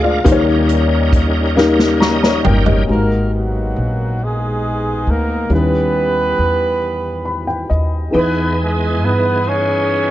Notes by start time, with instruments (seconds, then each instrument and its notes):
Already playing: upright bass D2, tonewheel organ G#3 D4, upright piano F4 G#4 D5 F5
0.03 tonewheel organ F4 A#4, upright piano F4 D5
0.24 upright bass D#2, upright piano D#3 A#3 D#4 G4 C5, tonewheel organ G3 C#4 D#4 A#4, kick, closed hi-hat
0.32 upright piano C#5
0.69 closed hi-hat
1.13 kick, closed hi-hat
1.57 upright piano A#3 D#4 G4 A#4, snare
1.79 snare
2.00 tonewheel organ D#5, upright piano A#5 C#6, snare
2.23 upright piano C#5 A#5, snare
2.44 upright bass G1, upright piano A#4 G5, tonewheel organ G5, floor tom
2.66 upright piano G4 D#5, floor tom
2.87 upright bass G#1, upright piano G#2 G#3 D#4 F#4 A#4, horn section D#4 F#4
2.91 horn section A#3 A#4
3.34 horn section F#3 A#3 B3 F#4
3.76 upright bass A#1
4.21 horn section G#3 B3 D#4 G#4
5.07 upright bass D2, horn section A#3 A#4
5.50 upright bass D#2, upright piano D#3 G3 C#4 E4 B4, horn section E4 G4
5.54 horn section B3 B4
6.39 upright bass E2
7.25 upright piano B5
7.47 upright piano G5
7.70 upright bass D#2, upright piano D#5
8.11 upright bass E2, upright piano E3 B3 D#4 G#4 B4, tonewheel organ E3 B3 D#4 G4
8.17 horn section B3 D#4 G#4 B4, tonewheel organ G#4
8.63 horn section G#3 G#4
9.02 upright bass G2, horn section B3 B4
9.47 horn section C#4 G#4 C#5